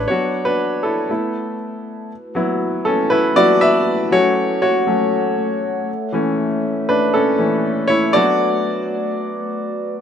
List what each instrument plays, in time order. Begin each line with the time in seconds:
Already playing: grand piano E3 A3 C#4 D4 E4 B4 C#5
0.08 grand piano F#3 B3 D4 F#4 C#5
0.45 grand piano D4 B4
0.83 grand piano E4 A4
1.09 grand piano A3 B3 E4
2.10 glass harmonica A3 E4 F#4 B4
2.35 grand piano F#3 B3 E4
2.85 grand piano C#4 A4
3.10 grand piano E4 B4
3.36 grand piano F#3 B3 E4 F#4 D5
3.61 grand piano B4 E5
4.11 grand piano F#3 A3 C#4 F#4 C#5, glass harmonica A4 C#5 F#5
4.62 grand piano F#4 C#5
4.87 grand piano F#3 A3 C#4
5.88 glass harmonica C#5 E5
6.13 grand piano E3 A3 C#4
6.89 grand piano D4 B4
7.14 grand piano C#4 A4
7.38 grand piano E3 A3 C#4
7.88 grand piano E4 C#5
8.13 grand piano F#3 B3 D4 F#4 D5, glass harmonica A3 F#4 B4 D5